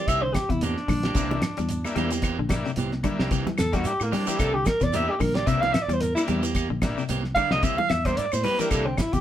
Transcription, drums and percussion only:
0.08 kick medium
0.08 closed hi-hat medium
0.08 high conga soft
0.08 claves medium
0.08 shekere medium
0.34 kick medium
0.34 snare medium
0.34 closed hi-hat soft
0.34 high conga medium
0.34 claves medium
0.34 shekere medium
0.50 kick medium
0.50 closed hi-hat medium
0.50 shekere soft
0.61 closed hi-hat medium
0.61 high conga medium
0.61 shekere medium
0.77 snare soft
0.77 high conga medium
0.88 kick medium
0.88 snare soft
0.88 open hi-hat medium
0.88 low conga medium
0.88 claves medium
0.88 shekere soft
1.03 snare medium
1.03 closed hi-hat medium
1.15 kick medium
1.15 snare soft
1.15 closed hi-hat medium
1.15 high conga soft
1.15 shekere medium
1.31 high conga loud
1.42 snare medium
1.42 closed hi-hat soft
1.42 claves medium
1.42 shekere medium
1.57 snare soft
1.57 closed hi-hat soft
1.57 shekere soft
1.69 closed hi-hat medium
1.69 high conga soft
1.69 shekere medium
1.84 high conga medium
1.84 claves medium
1.84 shekere medium
1.96 closed hi-hat medium
1.96 low conga medium
1.96 shekere soft
2.11 closed hi-hat medium
2.11 shekere medium
2.22 kick medium
2.22 closed hi-hat medium
2.22 high conga soft
2.22 claves medium
2.22 shekere medium
2.49 kick medium
2.49 snare medium
2.49 closed hi-hat soft
2.49 high conga medium
2.49 claves medium
2.49 shekere medium
2.64 snare soft
2.64 shekere soft
2.76 closed hi-hat medium
2.76 high conga medium
2.76 shekere medium
2.92 snare soft
2.92 high conga medium
3.04 kick medium
3.04 closed hi-hat soft
3.04 low conga medium
3.04 claves medium
3.04 shekere soft
3.19 snare medium
3.31 kick medium
3.31 snare soft
3.31 closed hi-hat medium
3.31 shekere medium
3.47 snare soft
3.47 high conga medium
3.47 low conga medium
3.58 snare medium
3.58 closed hi-hat medium
3.58 claves medium
3.58 shekere medium
3.73 kick medium
3.73 snare soft
3.73 closed hi-hat medium
3.73 shekere soft
3.85 closed hi-hat medium
3.85 high conga soft
3.85 shekere medium
4.00 high conga medium
4.00 claves medium
4.00 shekere medium
4.13 snare soft
4.13 open hi-hat medium
4.13 high conga medium
4.13 low conga medium
4.13 shekere soft
4.27 closed hi-hat medium
4.27 shekere medium
4.39 kick medium
4.39 snare soft
4.39 closed hi-hat medium
4.39 high conga soft
4.39 claves medium
4.39 shekere medium
4.66 kick medium
4.66 snare medium
4.66 closed hi-hat medium
4.66 high conga medium
4.66 claves medium
4.66 shekere medium
4.81 kick medium
4.81 snare soft
4.81 closed hi-hat medium
4.81 shekere soft
4.93 closed hi-hat medium
4.93 high conga medium
4.93 shekere medium
5.20 kick medium
5.20 open hi-hat medium
5.20 low conga medium
5.20 claves medium
5.20 shekere soft
5.35 snare medium
5.35 closed hi-hat soft
5.47 kick loud
5.47 closed hi-hat medium
5.47 high conga soft
5.47 shekere medium
5.62 snare soft
5.62 high conga medium
5.74 snare medium
5.74 closed hi-hat medium
5.74 claves medium
5.74 shekere medium
5.89 closed hi-hat medium
5.89 shekere soft
6.01 snare soft
6.01 closed hi-hat medium
6.01 high conga soft
6.01 shekere medium
6.17 high conga medium
6.17 claves medium
6.17 shekere medium
6.28 closed hi-hat medium
6.28 low conga medium
6.28 shekere soft
6.43 closed hi-hat medium
6.43 shekere medium
6.55 kick medium
6.55 closed hi-hat medium
6.55 high conga soft
6.55 claves medium
6.55 shekere medium
6.82 kick medium
6.82 snare medium
6.82 closed hi-hat soft
6.82 high conga medium
6.82 claves medium
6.82 shekere medium
6.98 shekere soft
7.09 closed hi-hat medium
7.09 high conga medium
7.09 shekere medium
7.24 snare soft
7.36 kick medium
7.36 closed hi-hat soft
7.36 low conga medium
7.36 claves medium
7.36 shekere soft
7.51 snare medium
7.63 kick loud
7.63 snare soft
7.63 closed hi-hat medium
7.63 high conga soft
7.63 shekere medium
7.78 high conga medium
7.78 low conga medium
7.90 snare medium
7.90 closed hi-hat soft
7.90 claves medium
7.90 shekere medium
8.05 kick medium
8.05 snare soft
8.05 closed hi-hat medium
8.05 shekere soft
8.17 closed hi-hat medium
8.17 high conga soft
8.17 shekere medium
8.32 high conga medium
8.32 claves medium
8.32 shekere medium
8.44 open hi-hat medium
8.44 low conga medium
8.44 shekere soft
8.59 snare soft
8.59 closed hi-hat medium
8.59 shekere medium
8.71 kick medium
8.71 closed hi-hat medium
8.71 high conga soft
8.71 claves medium
8.71 shekere medium
8.97 kick medium
8.97 snare medium
8.97 closed hi-hat medium
8.97 high conga medium
8.97 claves medium
8.97 shekere medium
9.13 kick medium
9.13 closed hi-hat medium
9.13 shekere soft

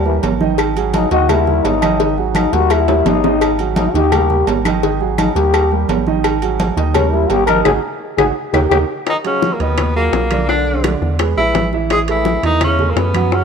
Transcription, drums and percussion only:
0.06 high conga soft
0.23 cowbell medium
0.23 high conga medium
0.23 low timbale medium
0.23 low agogo medium
0.41 high conga medium
0.58 cowbell loud
0.58 low agogo loud
0.58 claves medium
0.76 high conga soft
0.76 low agogo medium
0.94 cowbell medium
0.94 high conga medium
0.94 low timbale medium
0.94 low agogo medium
1.11 cowbell medium
1.11 high conga soft
1.29 cowbell loud
1.29 high conga soft
1.29 low conga medium
1.29 low agogo loud
1.29 claves medium
1.47 high conga soft
1.47 low conga medium
1.65 cowbell medium
1.65 low timbale medium
1.65 low agogo medium
1.82 cowbell medium
1.82 high conga medium
1.82 low agogo loud
1.82 claves medium
2.00 cowbell loud
2.00 high conga soft
2.18 high conga soft
2.35 cowbell medium
2.35 high conga loud
2.35 low timbale medium
2.35 low agogo loud
2.35 claves medium
2.53 cowbell medium
2.53 high conga soft
2.70 cowbell loud
2.70 high conga soft
2.70 low agogo loud
2.70 claves medium
2.88 high bongo medium
2.88 high conga soft
2.88 high timbale medium
3.06 cowbell medium
3.06 low bongo loud
3.06 high conga medium
3.06 low timbale medium
3.06 low agogo medium
3.24 low bongo loud
3.24 low timbale medium
3.41 cowbell loud
3.41 high conga soft
3.41 low agogo loud
3.41 claves medium
3.59 high conga soft
3.59 low agogo medium
3.76 cowbell medium
3.76 high conga loud
3.76 low timbale medium
3.76 low agogo medium
3.94 cowbell medium
3.94 high conga soft
4.12 cowbell loud
4.12 high conga soft
4.12 low conga medium
4.12 low agogo loud
4.12 claves medium
4.30 high conga soft
4.30 low conga medium
4.47 cowbell medium
4.47 high conga soft
4.47 low timbale medium
4.47 low agogo medium
4.65 cowbell medium
4.65 high conga loud
4.65 low agogo loud
4.65 claves medium
4.83 cowbell loud
4.83 high conga soft
5.01 high conga soft
5.18 cowbell medium
5.18 high conga loud
5.18 low timbale medium
5.18 low agogo loud
5.18 claves medium
5.36 cowbell medium
5.36 high conga soft
5.54 cowbell loud
5.54 high conga soft
5.54 low agogo loud
5.54 claves medium
5.71 high conga soft
5.89 cowbell medium
5.89 high conga medium
5.89 low timbale medium
5.89 low agogo medium
6.07 high conga medium
6.24 cowbell loud
6.24 high conga soft
6.24 low agogo loud
6.24 claves medium
6.42 high conga soft
6.42 low agogo medium
6.60 cowbell medium
6.60 high conga loud
6.60 low timbale medium
6.60 low agogo medium
6.77 cowbell medium
6.77 high conga soft
6.94 cowbell loud
6.94 high conga soft
6.94 low conga medium
6.94 low agogo loud
6.94 claves medium
7.14 high conga soft
7.30 cowbell medium
7.30 high conga soft
7.30 low timbale medium
7.30 low agogo medium
7.47 cowbell medium
7.47 high conga medium
7.47 low agogo loud
7.47 claves medium
7.65 cowbell loud
7.65 low conga loud
7.65 high timbale loud
7.65 claves loud
8.18 cowbell loud
8.18 low conga loud
8.18 high timbale medium
8.18 claves loud
8.54 cowbell loud
8.54 low conga loud
8.54 high timbale loud
8.54 claves loud
8.71 cowbell loud
8.71 low conga loud
8.71 high timbale loud
8.71 claves loud
9.07 high bongo medium
9.07 high conga soft
9.07 high timbale medium
9.07 claves medium
9.25 high conga soft
9.25 high timbale medium
9.42 high bongo medium
9.42 high conga medium
9.60 high conga soft
9.60 high timbale medium
9.78 high bongo medium
9.78 high conga soft
9.78 low conga medium
9.78 high timbale medium
9.78 claves medium
9.96 high conga soft
10.13 high bongo medium
10.13 low bongo medium
10.13 high conga soft
10.13 high timbale medium
10.31 high conga medium
10.31 high timbale medium
10.31 claves medium
10.49 high bongo medium
10.49 high conga soft
10.67 high conga soft
10.84 high bongo medium
10.84 high conga medium
10.84 high timbale medium
10.84 claves medium
11.02 high bongo soft
11.02 high conga soft
11.19 high bongo medium
11.19 high conga soft
11.19 high timbale medium
11.19 claves medium
11.37 high bongo soft
11.37 high conga soft
11.55 high bongo medium
11.55 low bongo medium
11.55 high conga medium
11.55 high timbale medium
11.73 high bongo soft
11.90 high bongo medium
11.90 high conga soft
11.90 high timbale medium
11.90 claves medium
12.08 high conga soft
12.08 high timbale medium
12.25 high bongo medium
12.25 high conga medium
12.43 high conga soft
12.43 high timbale medium
12.61 high bongo medium
12.61 high conga soft
12.61 low conga medium
12.61 high timbale loud
12.61 claves medium
12.79 high conga soft
12.79 low conga medium
12.96 high bongo medium
12.96 low bongo medium
12.96 high conga soft
12.96 high timbale medium
13.14 high conga medium
13.14 high timbale medium
13.14 claves medium
13.32 high bongo medium
13.32 high conga soft

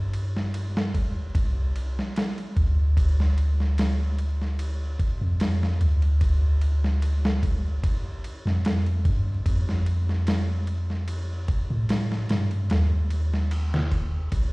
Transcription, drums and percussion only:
0.13 ride medium
0.36 snare soft
0.54 ride medium
0.77 snare loud
0.94 kick medium
0.94 ride medium
1.35 kick loud
1.35 ride medium
1.76 ride medium
1.99 snare soft
2.16 snare loud
2.16 ride medium
2.38 ride soft
2.56 kick medium
2.56 ride medium
2.97 kick loud
2.97 ride medium
3.20 snare soft
3.38 ride medium
3.60 snare soft
3.78 snare loud
3.78 ride medium
4.18 ride medium
4.41 snare soft
4.59 ride medium
4.99 kick medium
4.99 ride medium
5.40 snare loud
5.40 ride medium
5.63 snare medium
5.81 ride medium
6.02 ride soft
6.21 kick loud
6.21 ride medium
6.61 ride medium
6.84 snare soft
7.02 ride medium
7.25 snare loud
7.43 kick medium
7.43 ride medium
7.83 kick loud
7.83 ride medium
8.24 ride medium
8.47 snare soft
8.65 snare loud
8.65 ride medium
8.86 ride soft
9.05 kick medium
9.05 ride medium
9.46 kick loud
9.46 ride medium
9.69 snare soft
9.86 ride medium
10.09 snare soft
10.27 snare loud
10.27 ride medium
10.67 ride medium
10.90 snare soft
11.08 ride medium
11.48 kick medium
11.48 ride medium
11.89 snare loud
11.89 ride medium
12.12 snare medium
12.29 snare medium
12.29 ride medium
12.51 ride soft
12.70 snare loud
12.70 ride medium
13.10 ride medium
13.33 snare soft
13.51 ride medium
13.74 snare medium
13.92 kick medium
13.92 ride medium
14.32 kick loud
14.32 ride medium

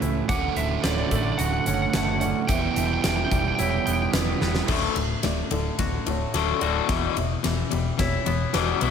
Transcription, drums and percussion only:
0.02 closed hi-hat medium
0.29 kick medium
0.29 closed hi-hat medium
0.56 closed hi-hat medium
0.84 snare medium
0.84 closed hi-hat medium
1.11 kick medium
1.11 closed hi-hat medium
1.39 closed hi-hat medium
1.66 closed hi-hat medium
1.93 snare medium
1.93 closed hi-hat medium
2.21 closed hi-hat medium
2.49 kick medium
2.49 closed hi-hat medium
2.76 closed hi-hat medium
3.04 snare loud
3.04 closed hi-hat medium
3.31 kick medium
3.31 closed hi-hat medium
3.59 closed hi-hat medium
3.87 closed hi-hat medium
4.14 snare loud
4.14 closed hi-hat medium
4.41 snare medium
4.55 snare medium
4.68 kick medium
4.68 snare soft
4.68 crash loud
4.96 ride medium
5.23 snare soft
5.23 ride medium
5.51 ride medium
5.79 kick medium
5.79 snare soft
5.79 ride medium
6.06 ride medium
6.34 snare soft
6.34 ride medium
6.61 ride medium
6.89 kick loud
6.89 snare medium
6.89 ride medium
7.17 ride medium
7.44 snare medium
7.44 ride medium
7.71 ride medium
7.99 kick medium
7.99 snare medium
7.99 ride medium
8.26 ride medium
8.54 snare medium
8.54 ride medium
8.81 ride medium

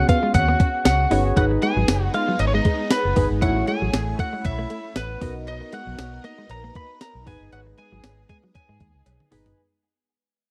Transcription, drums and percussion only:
0.09 kick medium
0.09 closed hi-hat medium
0.34 kick loud
0.34 closed hi-hat medium
0.34 cowbell medium
0.60 kick loud
0.60 closed hi-hat medium
0.85 snare loud
0.85 closed hi-hat loud
0.85 tambourine medium
0.85 cowbell medium
1.11 open hi-hat medium
1.37 kick loud
1.37 closed hi-hat medium
1.37 cowbell medium
1.62 closed hi-hat medium
1.88 snare loud
1.88 closed hi-hat medium
1.88 tambourine medium
1.88 cowbell medium
2.14 closed hi-hat medium
2.39 closed hi-hat medium
2.39 cowbell medium
2.65 kick medium
2.65 closed hi-hat medium
2.90 snare loud
2.90 closed hi-hat loud
2.90 tambourine medium
2.90 cowbell medium
3.16 kick loud
3.16 open hi-hat medium
3.42 kick loud
3.42 closed hi-hat medium
3.42 cowbell medium
3.67 closed hi-hat medium
3.93 snare loud
3.93 closed hi-hat medium
3.93 tambourine medium
3.93 cowbell medium
4.19 kick medium
4.19 closed hi-hat medium
4.45 kick medium
4.45 closed hi-hat medium
4.45 cowbell medium
4.70 closed hi-hat medium
4.96 snare loud
4.96 closed hi-hat loud
4.96 tambourine medium
4.96 cowbell medium
5.21 kick loud
5.21 open hi-hat medium
5.47 closed hi-hat medium
5.47 cowbell medium
5.72 closed hi-hat medium
5.98 snare loud
5.98 closed hi-hat medium
5.98 tambourine medium
5.98 cowbell medium
6.24 closed hi-hat medium
6.50 closed hi-hat medium
6.50 cowbell medium
6.75 kick medium
6.75 closed hi-hat medium
7.01 snare loud
7.01 closed hi-hat loud
7.01 tambourine medium
7.01 cowbell medium
7.27 kick loud
7.27 open hi-hat medium
7.52 closed hi-hat medium
7.52 cowbell medium
7.78 closed hi-hat medium
8.04 snare loud
8.04 closed hi-hat medium
8.04 tambourine medium
8.04 cowbell medium
8.29 kick loud
8.29 closed hi-hat medium
8.55 kick medium
8.55 closed hi-hat medium
8.55 cowbell medium
8.80 kick medium
8.80 closed hi-hat medium
9.06 closed hi-hat loud
9.06 high tom medium
9.06 cowbell medium
9.20 mid tom medium
9.32 mid tom loud
9.32 open hi-hat medium
9.46 floor tom loud

